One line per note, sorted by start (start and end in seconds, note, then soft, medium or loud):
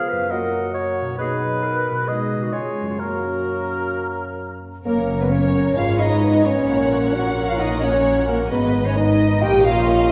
0.00 0.23 C#3 soft
0.00 0.32 F3 medium
0.00 0.29 B3 medium
0.00 0.16 C#4 soft
0.00 0.28 F4 soft
0.00 0.30 F4 medium
0.00 0.30 G#4 soft
0.00 0.30 B4 soft
0.00 0.32 F5 medium
0.08 0.30 B4 medium
0.12 1.12 F#2 soft
0.17 1.14 C#4 soft
0.21 1.09 F#4 soft
0.26 1.19 A#3 soft
0.26 1.19 A#4 soft
0.30 1.19 F#3 medium
0.30 1.19 F#4 medium
0.30 0.74 A#4 medium
0.30 0.74 D#5 medium
0.30 1.18 F#5 medium
0.75 1.18 C#5 medium
1.01 1.89 B2 soft
1.06 1.93 D#4 soft
1.10 2.05 F#4 soft
1.15 2.02 B4 soft
1.15 2.10 B4 medium
1.15 2.04 D#5 medium
1.19 2.04 B2 medium
1.19 1.92 F#3 medium
1.19 1.92 D#4 medium
1.19 1.65 G#4 medium
1.63 2.10 A#4 medium
1.90 2.46 B2 soft
1.95 2.48 D#4 soft
1.99 2.43 G#4 soft
2.04 2.53 B4 soft
2.04 2.55 D#5 soft
2.08 2.55 B2 soft
2.08 2.52 G#3 soft
2.08 2.53 D#4 soft
2.08 2.44 G#4 medium
2.08 2.54 D#5 medium
2.36 2.92 C#3 soft
2.40 2.85 C#4 soft
2.40 2.54 F#4 soft
2.45 2.97 G#4 soft
2.53 3.01 C#3 soft
2.53 2.99 G#3 soft
2.53 2.99 C#4 soft
2.53 2.88 F4 medium
2.53 3.01 C#5 soft
2.53 3.00 G#5 soft
2.82 4.79 F#2 soft
2.86 5.07 C#4 soft
2.86 2.99 F4 soft
2.91 5.19 F#4 soft
2.95 4.62 F#3 soft
2.95 4.36 F#4 medium
2.95 5.30 A#4 soft
2.95 4.62 A#5 soft
3.00 4.63 A#3 soft
3.00 4.59 C#4 soft
3.00 4.63 A#4 soft
4.85 5.74 F#1 medium
4.85 5.80 F#2 medium
4.85 5.74 F#2 medium
4.85 5.18 A#3 medium
4.85 5.74 C#4 medium
4.85 5.18 A#4 medium
4.85 5.74 A#4 medium
4.85 5.18 A#4 medium
4.85 5.19 A#4 medium
4.85 6.65 C#5 medium
4.97 5.80 C#3 soft
5.09 5.99 C#4 soft
5.20 5.32 B3 medium
5.20 5.80 F#4 soft
5.20 5.31 B4 medium
5.20 5.25 B4 medium
5.20 5.26 B4 medium
5.31 5.77 C#4 medium
5.31 5.79 A#4 soft
5.31 5.77 C#5 medium
5.31 5.80 C#5 medium
5.43 6.34 C#5 soft
5.55 5.80 F#5 soft
5.66 5.80 A#5 soft
5.76 6.69 G#1 medium
5.76 6.69 G#2 medium
5.76 6.71 G#2 medium
5.76 6.25 G#3 medium
5.76 6.00 F4 medium
5.76 6.65 B4 medium
5.76 8.48 C#5 medium
5.76 6.01 F5 medium
5.76 6.00 F5 medium
5.76 6.04 F5 medium
5.89 6.71 G#3 soft
5.99 6.90 C#4 soft
5.99 6.45 D#4 medium
5.99 6.47 D#5 medium
5.99 6.45 D#5 medium
5.99 6.48 D#5 medium
6.12 6.71 F4 soft
6.23 6.69 B3 medium
6.23 6.71 B4 soft
6.35 7.25 C#5 soft
6.45 7.13 C#4 medium
6.45 7.14 C#5 medium
6.45 7.13 C#5 medium
6.45 6.71 F5 soft
6.58 6.71 B5 soft
6.69 8.48 A#1 medium
6.69 8.48 A#2 medium
6.69 8.54 A#2 medium
6.69 7.16 A#3 medium
6.69 8.48 A#4 medium
6.69 8.48 F#5 medium
6.80 8.54 A#3 soft
6.92 8.39 C#4 soft
7.03 8.27 F#4 soft
7.14 8.51 F#3 medium
7.14 7.48 F#4 medium
7.14 8.54 A#4 soft
7.14 7.47 F#5 medium
7.14 7.49 F#5 medium
7.26 8.16 C#5 soft
7.37 7.59 F#5 soft
7.48 7.61 F4 medium
7.48 7.61 F5 medium
7.48 7.60 F5 medium
7.48 7.70 A#5 soft
7.58 7.82 D#4 medium
7.58 7.82 D#5 medium
7.58 7.82 F#5 soft
7.72 7.93 A#5 soft
7.82 8.27 C#4 medium
7.82 8.27 C#5 medium
7.82 8.28 C#5 medium
7.82 8.29 C#5 medium
7.82 8.05 F#5 soft
7.94 8.54 A#5 soft
8.06 8.54 F#5 medium
8.18 8.54 C#5 soft
8.28 8.51 A#3 medium
8.28 8.53 F#4 soft
8.28 8.53 A#4 medium
8.28 8.51 A#4 medium
8.28 8.53 A#4 medium
8.40 8.54 C#4 soft
8.51 9.40 G#1 medium
8.51 9.44 G#2 medium
8.51 9.40 G#2 medium
8.51 8.98 G#3 medium
8.51 8.85 B3 medium
8.51 8.87 B4 medium
8.51 9.38 B4 medium
8.51 8.84 B4 medium
8.51 8.86 B4 medium
8.51 10.12 D#5 medium
8.63 9.44 D#3 soft
8.74 9.44 B3 soft
8.85 8.97 C#4 medium
8.85 9.07 D#4 soft
8.85 8.96 C#5 medium
8.85 8.97 C#5 medium
8.96 9.42 B3 medium
8.96 9.41 D#4 medium
8.96 9.44 B4 soft
8.96 9.43 D#5 medium
8.96 9.42 D#5 medium
8.96 9.44 D#5 medium
9.08 9.74 D#4 soft
9.19 10.08 D#5 soft
9.30 9.44 B5 medium
9.41 10.12 A#1 medium
9.41 10.12 A#2 medium
9.41 9.86 A#3 medium
9.41 9.65 G4 medium
9.41 10.12 A#4 medium
9.41 10.12 C#5 medium
9.41 9.63 G5 medium
9.41 9.64 G5 medium
9.41 9.67 G5 medium
9.53 10.12 A#3 soft
9.64 10.12 C#4 soft
9.64 10.10 F4 medium
9.64 10.11 F5 medium
9.64 10.09 F5 medium
9.64 10.11 F5 medium
9.75 10.12 D#4 soft
9.87 10.12 C#4 medium
9.87 10.12 A#4 soft
9.98 10.12 C#5 medium